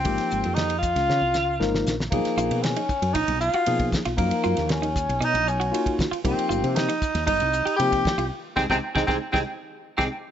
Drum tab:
RD |xx-xxx-x--------|xx-xxx-xxx-xxx-x|xx-xxx-xxx-xxx-x|xx-xxx-xxx-xxx-x|
HH |--p---p---p---p-|--p---p---p---p-|--p---p---p---p-|--p---p---p---p-|
SD |-o--o--oo-o-oooo|-o--o---------oo|---oo---------o-|----o--o------o-|
BD |o-----o---------|o-----o-o----oo-|o-----o------oo-|o-----o-o----oo-|

RD |----------------|
HH |----------------|
SD |--oo-oo-o----o--|
BD |--oo-oo-o----o--|